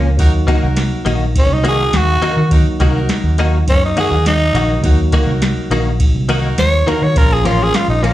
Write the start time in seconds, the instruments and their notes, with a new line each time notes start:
Already playing: fingered electric bass C#2, tine electric piano F3 A#3 C#4 F4, tenor saxophone A#3
0.17 fingered electric bass D#2, tine electric piano F#3 A#3 D#4, horn section D#4 F#4 A#4, kick, ride
0.21 tine electric piano F#4
0.47 clean electric guitar D#3 A#3 D#4 F#4, horn section D#4 F#4 A#4, kick, ride
0.63 fingered electric bass C2
0.76 snare, ride
1.05 fingered electric bass A#1, clean electric guitar D#3 A#3 D#4 F#4, ride
1.35 tenor saxophone C#4, kick, ride
1.49 fingered electric bass C2
1.53 tenor saxophone D#4
1.64 clean electric guitar D#3 A#3 D#4 F#4, horn section D#4 F#4 A#4, ride
1.68 tenor saxophone G#4
1.93 fingered electric bass D#2, tenor saxophone F#4, snare, ride
2.21 clean electric guitar D#3 A#3 D#4 F#4, muted fingered electric bass stroke, ride
2.37 fingered electric bass D#3
2.50 tine electric piano F#3 A#3 D#4 F#4, horn section D#4 F#4 A#4, kick, ride
2.79 fingered electric bass C2, clean electric guitar D#3 A#3 D#4 F#4, horn section D#4 F#4 A#4, kick, ride
3.09 snare, ride
3.24 fingered electric bass D#2
3.38 clean electric guitar D#3 A#3 D#4 F#4, ride
3.67 fingered electric bass F#2, tenor saxophone C#4, kick, ride
3.85 tenor saxophone D#4
3.96 clean electric guitar D#3 A#3 D#4 F#4, horn section D#4 F#4 A#4, tenor saxophone G#4, ride
4.11 fingered electric bass D#2
4.26 tenor saxophone D#4, snare, ride
4.53 fingered electric bass A#1, clean electric guitar D#3 A#3 D#4 F#4, ride
4.82 fingered electric bass D#2, tine electric piano F#3 A#3 D#4 F#4, horn section D#4 F#4 A#4, kick, ride
5.12 clean electric guitar D#3 A#3 D#4 F#4, horn section D#4 F#4 A#4, kick, ride
5.26 fingered electric bass C2
5.42 snare, ride
5.70 fingered electric bass A#1, clean electric guitar D#3 A#3 D#4 F#4, ride
6.00 kick, ride
6.15 fingered electric bass C2
6.28 clean electric guitar D#3 A#3 D#4 F#4, horn section D#4 F#4 A#4, ride
6.58 fingered electric bass D#2, tenor saxophone C#5, snare, ride
6.87 clean electric guitar D#3 A#3 D#4 F#4, tenor saxophone A#4, muted fingered electric bass stroke, ride
7.02 fingered electric bass D#3, tenor saxophone C#5
7.14 fingered electric bass A#1, tine electric piano F3 A#3 C#4 F4, horn section C#4 F4 A#4, tenor saxophone A#4, kick, ride
7.33 tenor saxophone G#4
7.44 fingered electric bass A1, clean electric guitar A#2 F3 A#3 C#4, horn section C#4 F4 A#4, tenor saxophone F4, ride
7.63 tenor saxophone G#4
7.74 tenor saxophone F4, snare, ride
7.88 fingered electric bass A#1, tenor saxophone D#4
8.03 clean electric guitar A#2 F3 A#3 C#4, tenor saxophone A#3, ride